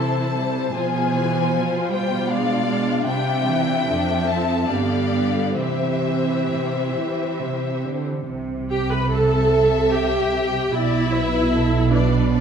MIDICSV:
0, 0, Header, 1, 6, 480
1, 0, Start_track
1, 0, Key_signature, 0, "major"
1, 0, Tempo, 783290
1, 460, Time_signature, 3, 2, 24, 8
1, 2377, Tempo, 827586
1, 2857, Tempo, 895522
1, 4777, Tempo, 825309
1, 5737, Tempo, 797872
1, 7220, End_track
2, 0, Start_track
2, 0, Title_t, "Violin section"
2, 0, Program_c, 0, 48
2, 0, Note_on_c, 0, 81, 49
2, 458, Note_off_c, 0, 81, 0
2, 462, Note_on_c, 0, 80, 53
2, 1170, Note_off_c, 0, 80, 0
2, 1176, Note_on_c, 0, 79, 56
2, 1402, Note_off_c, 0, 79, 0
2, 1409, Note_on_c, 0, 77, 59
2, 1886, Note_off_c, 0, 77, 0
2, 1888, Note_on_c, 0, 79, 65
2, 2601, Note_off_c, 0, 79, 0
2, 2615, Note_on_c, 0, 81, 59
2, 2857, Note_off_c, 0, 81, 0
2, 2858, Note_on_c, 0, 77, 52
2, 3331, Note_off_c, 0, 77, 0
2, 3337, Note_on_c, 0, 76, 53
2, 4524, Note_off_c, 0, 76, 0
2, 5017, Note_on_c, 0, 79, 46
2, 5130, Note_off_c, 0, 79, 0
2, 5137, Note_on_c, 0, 83, 48
2, 5259, Note_off_c, 0, 83, 0
2, 5262, Note_on_c, 0, 81, 56
2, 5737, Note_off_c, 0, 81, 0
2, 5740, Note_on_c, 0, 79, 57
2, 6217, Note_on_c, 0, 76, 67
2, 6223, Note_off_c, 0, 79, 0
2, 6935, Note_off_c, 0, 76, 0
2, 6935, Note_on_c, 0, 74, 51
2, 7161, Note_off_c, 0, 74, 0
2, 7169, Note_on_c, 0, 74, 61
2, 7220, Note_off_c, 0, 74, 0
2, 7220, End_track
3, 0, Start_track
3, 0, Title_t, "Violin section"
3, 0, Program_c, 1, 48
3, 0, Note_on_c, 1, 69, 41
3, 0, Note_on_c, 1, 72, 50
3, 438, Note_off_c, 1, 69, 0
3, 464, Note_on_c, 1, 68, 41
3, 936, Note_off_c, 1, 68, 0
3, 936, Note_on_c, 1, 65, 43
3, 1383, Note_off_c, 1, 72, 0
3, 1404, Note_on_c, 1, 74, 49
3, 1880, Note_on_c, 1, 76, 54
3, 1883, Note_off_c, 1, 74, 0
3, 2374, Note_on_c, 1, 69, 45
3, 2378, Note_off_c, 1, 65, 0
3, 2836, Note_off_c, 1, 76, 0
3, 2846, Note_off_c, 1, 69, 0
3, 2855, Note_on_c, 1, 67, 47
3, 2855, Note_on_c, 1, 74, 44
3, 3324, Note_off_c, 1, 67, 0
3, 3329, Note_off_c, 1, 74, 0
3, 3331, Note_on_c, 1, 67, 42
3, 3331, Note_on_c, 1, 72, 42
3, 4642, Note_off_c, 1, 67, 0
3, 4642, Note_off_c, 1, 72, 0
3, 5262, Note_on_c, 1, 76, 60
3, 6198, Note_off_c, 1, 76, 0
3, 6225, Note_on_c, 1, 74, 60
3, 6464, Note_off_c, 1, 74, 0
3, 6466, Note_on_c, 1, 71, 61
3, 6702, Note_off_c, 1, 71, 0
3, 6704, Note_on_c, 1, 69, 51
3, 6936, Note_on_c, 1, 71, 52
3, 6939, Note_off_c, 1, 69, 0
3, 7171, Note_off_c, 1, 71, 0
3, 7173, Note_on_c, 1, 74, 64
3, 7220, Note_off_c, 1, 74, 0
3, 7220, End_track
4, 0, Start_track
4, 0, Title_t, "Viola section"
4, 0, Program_c, 2, 48
4, 0, Note_on_c, 2, 52, 43
4, 0, Note_on_c, 2, 64, 48
4, 216, Note_on_c, 2, 55, 43
4, 217, Note_off_c, 2, 52, 0
4, 454, Note_off_c, 2, 55, 0
4, 457, Note_on_c, 2, 53, 46
4, 458, Note_off_c, 2, 64, 0
4, 460, Note_on_c, 2, 65, 48
4, 696, Note_off_c, 2, 53, 0
4, 696, Note_on_c, 2, 52, 54
4, 933, Note_off_c, 2, 52, 0
4, 938, Note_on_c, 2, 53, 47
4, 1169, Note_on_c, 2, 55, 45
4, 1171, Note_off_c, 2, 53, 0
4, 1385, Note_off_c, 2, 65, 0
4, 1402, Note_on_c, 2, 62, 53
4, 1404, Note_off_c, 2, 55, 0
4, 1404, Note_on_c, 2, 56, 47
4, 1628, Note_off_c, 2, 56, 0
4, 1635, Note_on_c, 2, 56, 45
4, 1875, Note_off_c, 2, 56, 0
4, 1883, Note_on_c, 2, 55, 50
4, 2124, Note_off_c, 2, 55, 0
4, 2126, Note_on_c, 2, 52, 55
4, 2367, Note_off_c, 2, 62, 0
4, 2374, Note_on_c, 2, 53, 53
4, 2375, Note_off_c, 2, 52, 0
4, 2375, Note_on_c, 2, 62, 49
4, 2608, Note_off_c, 2, 62, 0
4, 2614, Note_on_c, 2, 60, 53
4, 2855, Note_off_c, 2, 53, 0
4, 2855, Note_on_c, 2, 59, 45
4, 2857, Note_off_c, 2, 60, 0
4, 2857, Note_on_c, 2, 50, 41
4, 3081, Note_off_c, 2, 59, 0
4, 3087, Note_on_c, 2, 59, 45
4, 3321, Note_off_c, 2, 50, 0
4, 3324, Note_off_c, 2, 59, 0
4, 3325, Note_on_c, 2, 52, 43
4, 3325, Note_on_c, 2, 60, 39
4, 4660, Note_off_c, 2, 52, 0
4, 4661, Note_off_c, 2, 60, 0
4, 5019, Note_on_c, 2, 67, 65
4, 5131, Note_off_c, 2, 67, 0
4, 5138, Note_on_c, 2, 71, 59
4, 5257, Note_on_c, 2, 69, 67
4, 5259, Note_off_c, 2, 71, 0
4, 5725, Note_off_c, 2, 69, 0
4, 5726, Note_on_c, 2, 67, 68
4, 6213, Note_on_c, 2, 64, 76
4, 6216, Note_off_c, 2, 67, 0
4, 6933, Note_off_c, 2, 64, 0
4, 6933, Note_on_c, 2, 62, 61
4, 7171, Note_off_c, 2, 62, 0
4, 7178, Note_on_c, 2, 62, 78
4, 7220, Note_off_c, 2, 62, 0
4, 7220, End_track
5, 0, Start_track
5, 0, Title_t, "Cello section"
5, 0, Program_c, 3, 48
5, 0, Note_on_c, 3, 48, 46
5, 435, Note_off_c, 3, 48, 0
5, 463, Note_on_c, 3, 47, 47
5, 1860, Note_off_c, 3, 47, 0
5, 1884, Note_on_c, 3, 48, 58
5, 2367, Note_off_c, 3, 48, 0
5, 2374, Note_on_c, 3, 41, 52
5, 2855, Note_off_c, 3, 41, 0
5, 2855, Note_on_c, 3, 43, 46
5, 3320, Note_off_c, 3, 43, 0
5, 3329, Note_on_c, 3, 48, 40
5, 3762, Note_off_c, 3, 48, 0
5, 3820, Note_on_c, 3, 48, 41
5, 4044, Note_off_c, 3, 48, 0
5, 4061, Note_on_c, 3, 52, 42
5, 4299, Note_on_c, 3, 48, 39
5, 4301, Note_off_c, 3, 52, 0
5, 4542, Note_off_c, 3, 48, 0
5, 4543, Note_on_c, 3, 50, 35
5, 4777, Note_off_c, 3, 50, 0
5, 4778, Note_on_c, 3, 48, 47
5, 6198, Note_off_c, 3, 48, 0
5, 6221, Note_on_c, 3, 47, 54
5, 7220, Note_off_c, 3, 47, 0
5, 7220, End_track
6, 0, Start_track
6, 0, Title_t, "Double bass section"
6, 0, Program_c, 4, 48
6, 4774, Note_on_c, 4, 36, 48
6, 6196, Note_off_c, 4, 36, 0
6, 6220, Note_on_c, 4, 35, 58
6, 7220, Note_off_c, 4, 35, 0
6, 7220, End_track
0, 0, End_of_file